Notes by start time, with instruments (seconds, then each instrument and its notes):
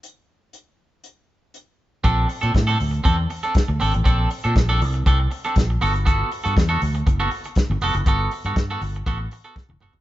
0.03 closed hi-hat
0.53 closed hi-hat
1.04 closed hi-hat
1.54 closed hi-hat
2.04 fingered electric bass A#1, clean electric guitar C4 D4 A4, kick, closed hi-hat
2.29 muted clean electric guitar stroke, open hi-hat
2.41 fingered electric bass A#2, clean electric guitar C4 D4 A4, closed hi-hat
2.54 fingered electric bass A2, muted clean electric guitar stroke, kick, snare, closed hi-hat
2.67 clean electric guitar C4 D4 A4
2.78 fingered electric bass D2, muted clean electric guitar stroke, open hi-hat
2.91 muted clean electric guitar stroke, closed hi-hat
3.04 fingered electric bass E2, clean electric guitar C4 D4 A4, kick, closed hi-hat
3.18 muted clean electric guitar stroke
3.30 muted clean electric guitar stroke, open hi-hat
3.43 clean electric guitar C4 D4 A4, closed hi-hat
3.55 kick, snare, closed hi-hat
3.68 fingered electric bass D2, muted clean electric guitar stroke
3.80 fingered electric bass G#1, clean electric guitar C4 D4 A4, open hi-hat
3.94 fingered electric bass A1, muted clean electric guitar stroke, closed hi-hat
4.04 fingered electric bass A#1, clean electric guitar C4 D4 A4, kick, closed hi-hat
4.30 muted clean electric guitar stroke, open hi-hat
4.44 fingered electric bass A#2, clean electric guitar C4 D4 A4, closed hi-hat
4.55 fingered electric bass A#1, muted clean electric guitar stroke, kick, snare, closed hi-hat
4.69 clean electric guitar C4 D4 A4
4.81 fingered electric bass C2, muted clean electric guitar stroke, open hi-hat
4.94 muted clean electric guitar stroke, closed hi-hat
5.06 fingered electric bass C2, clean electric guitar C4 D4 A4, kick, closed hi-hat
5.20 muted clean electric guitar stroke
5.31 muted clean electric guitar stroke, open hi-hat
5.44 clean electric guitar C4 D4 A4, closed hi-hat
5.56 fingered electric bass A#1, kick, snare, closed hi-hat
5.70 muted clean electric guitar stroke
5.81 fingered electric bass G1, clean electric guitar B3 F#4 A4, open hi-hat
5.94 muted clean electric guitar stroke, closed hi-hat
6.05 clean electric guitar B3 F#4 A4, kick, closed hi-hat
6.31 muted clean electric guitar stroke, open hi-hat
6.44 fingered electric bass G2, clean electric guitar B3 F#4 A4, closed hi-hat
6.56 fingered electric bass E2, muted clean electric guitar stroke, kick, snare, closed hi-hat
6.69 clean electric guitar B3 F#4 A4
6.81 fingered electric bass D2, muted clean electric guitar stroke, open hi-hat
6.95 muted clean electric guitar stroke, closed hi-hat
7.06 fingered electric bass F#1, muted clean electric guitar stroke, kick, closed hi-hat
7.20 clean electric guitar B3 F#4 A4
7.31 muted clean electric guitar stroke, open hi-hat
7.44 muted clean electric guitar stroke, closed hi-hat
7.55 kick, snare, closed hi-hat
7.70 fingered electric bass G1, muted clean electric guitar stroke
7.81 fingered electric bass F1, clean electric guitar B3 F#4 A4, open hi-hat
7.94 fingered electric bass F#1, muted clean electric guitar stroke, closed hi-hat
8.06 fingered electric bass G1, clean electric guitar B3 F#4 A4, kick, closed hi-hat
8.31 muted clean electric guitar stroke, open hi-hat
8.44 fingered electric bass G2, clean electric guitar B3 F#4 A4, closed hi-hat
8.56 fingered electric bass G2, muted clean electric guitar stroke, kick, snare, closed hi-hat
8.70 clean electric guitar B3 F#4 A4
8.81 fingered electric bass G1, muted clean electric guitar stroke, open hi-hat
8.94 muted clean electric guitar stroke, closed hi-hat
9.06 fingered electric bass A1, clean electric guitar B3 F#4 A4, kick, closed hi-hat
9.19 muted clean electric guitar stroke
9.31 muted clean electric guitar stroke, open hi-hat
9.44 clean electric guitar B3 F#4 A4, closed hi-hat
9.56 kick, snare
9.69 fingered electric bass E1, muted clean electric guitar stroke, high tom
9.80 fingered electric bass F1, clean electric guitar B3 F#4 A4, mid tom
9.93 fingered electric bass F#1, floor tom